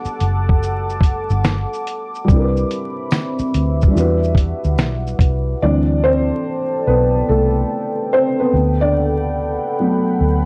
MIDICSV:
0, 0, Header, 1, 6, 480
1, 0, Start_track
1, 0, Tempo, 833333
1, 1314, Time_signature, 4, 2, 24, 8
1, 6021, End_track
2, 0, Start_track
2, 0, Title_t, "Analog synth pad"
2, 0, Program_c, 0, 89
2, 0, Note_on_c, 0, 69, 86
2, 0, Note_on_c, 0, 78, 78
2, 0, Note_on_c, 0, 81, 76
2, 0, Note_on_c, 0, 86, 94
2, 1297, Note_off_c, 0, 81, 0
2, 1298, Note_off_c, 0, 69, 0
2, 1298, Note_off_c, 0, 78, 0
2, 1317, Note_on_c, 0, 76, 80
2, 1319, Note_on_c, 0, 83, 77
2, 1322, Note_on_c, 0, 60, 85
2, 2267, Note_off_c, 0, 83, 0
2, 2268, Note_off_c, 0, 60, 0
2, 2273, Note_on_c, 0, 78, 78
2, 2276, Note_on_c, 0, 55, 76
2, 3210, Note_off_c, 0, 86, 0
2, 3216, Note_off_c, 0, 76, 0
2, 3224, Note_off_c, 0, 78, 0
2, 3225, Note_off_c, 0, 55, 0
2, 3233, Note_on_c, 0, 69, 84
2, 3234, Note_on_c, 0, 74, 80
2, 3234, Note_on_c, 0, 81, 88
2, 3237, Note_on_c, 0, 79, 79
2, 4897, Note_off_c, 0, 74, 0
2, 4897, Note_off_c, 0, 81, 0
2, 4908, Note_on_c, 0, 78, 71
2, 4911, Note_on_c, 0, 83, 83
2, 6021, Note_off_c, 0, 69, 0
2, 6021, Note_off_c, 0, 78, 0
2, 6021, Note_off_c, 0, 79, 0
2, 6021, Note_off_c, 0, 83, 0
2, 6021, End_track
3, 0, Start_track
3, 0, Title_t, "Felt piano"
3, 0, Program_c, 1, 0
3, 0, Control_c, 1, 64, 127
3, 0, Note_on_c, 1, 55, 77
3, 0, Note_on_c, 1, 59, 58
3, 0, Note_on_c, 1, 62, 69
3, 0, Note_on_c, 1, 66, 65
3, 0, Note_on_c, 1, 69, 79
3, 1281, Note_off_c, 1, 55, 0
3, 1289, Note_off_c, 1, 59, 0
3, 1292, Note_on_c, 1, 55, 81
3, 1298, Note_off_c, 1, 62, 0
3, 1305, Note_off_c, 1, 66, 0
3, 1309, Note_on_c, 1, 60, 61
3, 1315, Note_off_c, 1, 69, 0
3, 1320, Control_c, 1, 64, 0
3, 1327, Note_on_c, 1, 62, 57
3, 1343, Note_on_c, 1, 64, 60
3, 1360, Note_on_c, 1, 70, 65
3, 1385, Note_off_c, 1, 70, 0
3, 1398, Note_on_c, 1, 71, 72
3, 1409, Control_c, 1, 64, 127
3, 2222, Note_off_c, 1, 55, 0
3, 2231, Note_on_c, 1, 55, 61
3, 2238, Note_off_c, 1, 62, 0
3, 2247, Note_on_c, 1, 62, 60
3, 2252, Note_off_c, 1, 60, 0
3, 2259, Note_off_c, 1, 64, 0
3, 2267, Note_on_c, 1, 64, 62
3, 2280, Control_c, 1, 64, 0
3, 2284, Note_on_c, 1, 66, 73
3, 2292, Note_off_c, 1, 71, 0
3, 2300, Note_on_c, 1, 71, 81
3, 2388, Control_c, 1, 64, 127
3, 3192, Note_off_c, 1, 55, 0
3, 3201, Note_off_c, 1, 62, 0
3, 3211, Note_off_c, 1, 64, 0
3, 3220, Note_off_c, 1, 66, 0
3, 3228, Note_off_c, 1, 71, 0
3, 3238, Note_on_c, 1, 74, 109
3, 3241, Control_c, 1, 64, 0
3, 3241, Note_on_c, 1, 52, 54
3, 3244, Note_on_c, 1, 55, 45
3, 3248, Note_on_c, 1, 60, 59
3, 3249, Note_on_c, 1, 62, 85
3, 3331, Control_c, 1, 64, 127
3, 3465, Note_off_c, 1, 62, 0
3, 3476, Note_on_c, 1, 72, 110
3, 3478, Note_off_c, 1, 60, 0
3, 3483, Note_off_c, 1, 74, 0
3, 3486, Note_on_c, 1, 60, 81
3, 3932, Note_off_c, 1, 72, 0
3, 3937, Note_off_c, 1, 60, 0
3, 3959, Note_on_c, 1, 71, 92
3, 3966, Note_on_c, 1, 59, 67
3, 4184, Note_off_c, 1, 59, 0
3, 4200, Note_on_c, 1, 69, 88
3, 4203, Note_off_c, 1, 71, 0
3, 4208, Note_on_c, 1, 57, 69
3, 4658, Note_off_c, 1, 57, 0
3, 4683, Note_on_c, 1, 72, 100
3, 4691, Note_off_c, 1, 69, 0
3, 4691, Note_on_c, 1, 60, 70
3, 4827, Note_off_c, 1, 60, 0
3, 4836, Note_on_c, 1, 71, 78
3, 4837, Note_off_c, 1, 72, 0
3, 4842, Note_on_c, 1, 59, 66
3, 4894, Note_off_c, 1, 52, 0
3, 4896, Note_off_c, 1, 55, 0
3, 4922, Control_c, 1, 64, 0
3, 5020, Control_c, 1, 64, 127
3, 5059, Note_off_c, 1, 59, 0
3, 5076, Note_on_c, 1, 74, 107
3, 5079, Note_off_c, 1, 71, 0
3, 5080, Note_on_c, 1, 62, 70
3, 5640, Note_on_c, 1, 54, 57
3, 5642, Note_on_c, 1, 57, 52
3, 5647, Note_on_c, 1, 59, 61
3, 6021, Note_off_c, 1, 54, 0
3, 6021, Note_off_c, 1, 57, 0
3, 6021, Note_off_c, 1, 59, 0
3, 6021, Note_off_c, 1, 62, 0
3, 6021, Note_off_c, 1, 74, 0
3, 6021, End_track
4, 0, Start_track
4, 0, Title_t, "Fingered electric bass"
4, 0, Program_c, 2, 33
4, 120, Note_on_c, 2, 30, 81
4, 728, Note_off_c, 2, 30, 0
4, 751, Note_on_c, 2, 31, 85
4, 947, Note_off_c, 2, 31, 0
4, 1318, Note_on_c, 2, 36, 102
4, 1514, Note_off_c, 2, 36, 0
4, 2042, Note_on_c, 2, 38, 75
4, 2236, Note_off_c, 2, 38, 0
4, 2280, Note_on_c, 2, 40, 88
4, 2602, Note_off_c, 2, 40, 0
4, 2677, Note_on_c, 2, 38, 83
4, 2763, Note_off_c, 2, 38, 0
4, 2763, Note_on_c, 2, 35, 80
4, 2957, Note_off_c, 2, 35, 0
4, 2990, Note_on_c, 2, 36, 74
4, 3189, Note_off_c, 2, 36, 0
4, 3241, Note_on_c, 2, 38, 105
4, 3633, Note_off_c, 2, 38, 0
4, 3960, Note_on_c, 2, 35, 82
4, 4155, Note_off_c, 2, 35, 0
4, 4202, Note_on_c, 2, 36, 89
4, 4396, Note_off_c, 2, 36, 0
4, 4919, Note_on_c, 2, 38, 93
4, 5510, Note_off_c, 2, 38, 0
4, 5878, Note_on_c, 2, 38, 84
4, 6021, Note_off_c, 2, 38, 0
4, 6021, End_track
5, 0, Start_track
5, 0, Title_t, "Muted fingered electric bass strokes"
5, 30, Note_on_c, 9, 29, 42
5, 87, Note_off_c, 9, 29, 0
5, 1956, Note_on_c, 9, 29, 43
5, 2013, Note_off_c, 9, 29, 0
5, 6021, End_track
6, 0, Start_track
6, 0, Title_t, "Drums"
6, 28, Note_on_c, 9, 82, 51
6, 86, Note_off_c, 9, 82, 0
6, 117, Note_on_c, 9, 42, 59
6, 117, Note_on_c, 9, 82, 46
6, 175, Note_off_c, 9, 42, 0
6, 175, Note_off_c, 9, 82, 0
6, 282, Note_on_c, 9, 36, 88
6, 340, Note_off_c, 9, 36, 0
6, 362, Note_on_c, 9, 82, 76
6, 420, Note_off_c, 9, 82, 0
6, 517, Note_on_c, 9, 82, 43
6, 574, Note_off_c, 9, 82, 0
6, 581, Note_on_c, 9, 36, 85
6, 596, Note_on_c, 9, 42, 64
6, 596, Note_on_c, 9, 82, 42
6, 638, Note_off_c, 9, 36, 0
6, 653, Note_off_c, 9, 42, 0
6, 653, Note_off_c, 9, 82, 0
6, 748, Note_on_c, 9, 82, 42
6, 806, Note_off_c, 9, 82, 0
6, 831, Note_on_c, 9, 82, 57
6, 833, Note_on_c, 9, 54, 60
6, 834, Note_on_c, 9, 38, 102
6, 889, Note_off_c, 9, 82, 0
6, 891, Note_off_c, 9, 54, 0
6, 892, Note_off_c, 9, 38, 0
6, 998, Note_on_c, 9, 82, 43
6, 1056, Note_off_c, 9, 82, 0
6, 1077, Note_on_c, 9, 42, 63
6, 1077, Note_on_c, 9, 82, 45
6, 1134, Note_off_c, 9, 42, 0
6, 1134, Note_off_c, 9, 82, 0
6, 1237, Note_on_c, 9, 82, 42
6, 1294, Note_off_c, 9, 82, 0
6, 1315, Note_on_c, 9, 36, 111
6, 1319, Note_on_c, 9, 82, 72
6, 1372, Note_off_c, 9, 36, 0
6, 1377, Note_off_c, 9, 82, 0
6, 1479, Note_on_c, 9, 82, 41
6, 1537, Note_off_c, 9, 82, 0
6, 1561, Note_on_c, 9, 42, 61
6, 1561, Note_on_c, 9, 82, 41
6, 1619, Note_off_c, 9, 42, 0
6, 1619, Note_off_c, 9, 82, 0
6, 1791, Note_on_c, 9, 54, 71
6, 1799, Note_on_c, 9, 38, 97
6, 1802, Note_on_c, 9, 82, 65
6, 1849, Note_off_c, 9, 54, 0
6, 1856, Note_off_c, 9, 38, 0
6, 1860, Note_off_c, 9, 82, 0
6, 1952, Note_on_c, 9, 82, 52
6, 2010, Note_off_c, 9, 82, 0
6, 2040, Note_on_c, 9, 42, 64
6, 2040, Note_on_c, 9, 82, 44
6, 2098, Note_off_c, 9, 42, 0
6, 2098, Note_off_c, 9, 82, 0
6, 2197, Note_on_c, 9, 82, 51
6, 2206, Note_on_c, 9, 36, 81
6, 2254, Note_off_c, 9, 82, 0
6, 2263, Note_off_c, 9, 36, 0
6, 2285, Note_on_c, 9, 82, 78
6, 2342, Note_off_c, 9, 82, 0
6, 2440, Note_on_c, 9, 82, 38
6, 2497, Note_off_c, 9, 82, 0
6, 2504, Note_on_c, 9, 36, 80
6, 2519, Note_on_c, 9, 42, 67
6, 2519, Note_on_c, 9, 82, 44
6, 2561, Note_off_c, 9, 36, 0
6, 2577, Note_off_c, 9, 42, 0
6, 2577, Note_off_c, 9, 82, 0
6, 2674, Note_on_c, 9, 82, 38
6, 2731, Note_off_c, 9, 82, 0
6, 2754, Note_on_c, 9, 54, 57
6, 2755, Note_on_c, 9, 82, 53
6, 2758, Note_on_c, 9, 38, 98
6, 2811, Note_off_c, 9, 54, 0
6, 2813, Note_off_c, 9, 82, 0
6, 2816, Note_off_c, 9, 38, 0
6, 2921, Note_on_c, 9, 82, 42
6, 2979, Note_off_c, 9, 82, 0
6, 2990, Note_on_c, 9, 36, 96
6, 2999, Note_on_c, 9, 42, 63
6, 2999, Note_on_c, 9, 82, 47
6, 3047, Note_off_c, 9, 36, 0
6, 3057, Note_off_c, 9, 42, 0
6, 3057, Note_off_c, 9, 82, 0
6, 6021, End_track
0, 0, End_of_file